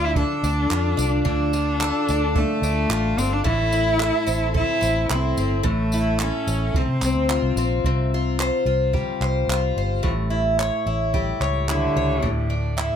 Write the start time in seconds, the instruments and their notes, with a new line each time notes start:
Already playing: fingered electric bass D2, twelve-string acoustic guitar D3 D4 F4 A4
0.05 cello E4
0.16 cello D4, twelve-string acoustic guitar A4, kick
0.43 fingered electric bass D2, twelve-string acoustic guitar D4, tambourine
0.70 fingered electric bass F2, twelve-string acoustic guitar F4, clap
0.97 fingered electric bass C2, twelve-string acoustic guitar D4, tambourine
1.25 fingered electric bass D2, twelve-string acoustic guitar D3, cello D4, kick
1.53 twelve-string acoustic guitar F4, tambourine
1.81 twelve-string acoustic guitar A4, clap
2.08 fingered electric bass D2, twelve-string acoustic guitar D4, tambourine
2.36 cello A3, twelve-string acoustic guitar A4, kick
2.62 fingered electric bass D2, twelve-string acoustic guitar D4, tambourine
2.89 fingered electric bass A1, twelve-string acoustic guitar F4, clap
3.17 fingered electric bass G1, cello C4, twelve-string acoustic guitar D4, tambourine
3.33 cello D4
3.44 fingered electric bass A1, twelve-string acoustic guitar A2, cello E4, kick
3.72 twelve-string acoustic guitar E4, tambourine
3.99 twelve-string acoustic guitar A4, clap
4.27 fingered electric bass A1, twelve-string acoustic guitar C4, tambourine
4.54 cello E4, twelve-string acoustic guitar A4, kick
4.81 fingered electric bass A1, twelve-string acoustic guitar C4, tambourine
5.10 fingered electric bass C2, cello C4, twelve-string acoustic guitar E4, clap
5.37 fingered electric bass G1, twelve-string acoustic guitar C4, tambourine
5.63 fingered electric bass A1, twelve-string acoustic guitar A2, kick
5.67 cello A3
5.92 twelve-string acoustic guitar E4, tambourine
6.20 cello C#4, twelve-string acoustic guitar A4, clap
6.47 fingered electric bass A1, twelve-string acoustic guitar C#4, tambourine
6.74 fingered electric bass C2, twelve-string acoustic guitar C3, cello C4, kick
6.89 fingered electric bass C3
7.01 fingered electric bass C2, twelve-string acoustic guitar C4, clap, tambourine
7.15 fingered electric bass D2
7.30 twelve-string acoustic guitar F4, clap
7.42 fingered electric bass C2
7.56 fingered electric bass A#1, twelve-string acoustic guitar C4, tambourine
7.84 fingered electric bass C2, twelve-string acoustic guitar C3, kick
8.14 twelve-string acoustic guitar F4
8.40 twelve-string acoustic guitar C5, clap
8.66 fingered electric bass C2, twelve-string acoustic guitar F4
8.93 twelve-string acoustic guitar G3, kick
9.21 fingered electric bass C2, twelve-string acoustic guitar C5, clap
9.48 fingered electric bass C2, twelve-string acoustic guitar F4, clap
9.76 fingered electric bass G1, twelve-string acoustic guitar C5
10.03 fingered electric bass A1, twelve-string acoustic guitar A2, kick
10.30 twelve-string acoustic guitar E4
10.59 twelve-string acoustic guitar C#5, clap
10.86 fingered electric bass A1, twelve-string acoustic guitar E4
11.14 twelve-string acoustic guitar G3, kick
11.40 fingered electric bass C#2, twelve-string acoustic guitar C#5, clap
11.69 cello D3, twelve-string acoustic guitar E4, clap
11.96 fingered electric bass C#2, twelve-string acoustic guitar C#5
12.22 fingered electric bass D2, cello A2, twelve-string acoustic guitar D3, kick
12.50 twelve-string acoustic guitar D4
12.77 cello A2, twelve-string acoustic guitar E4, clap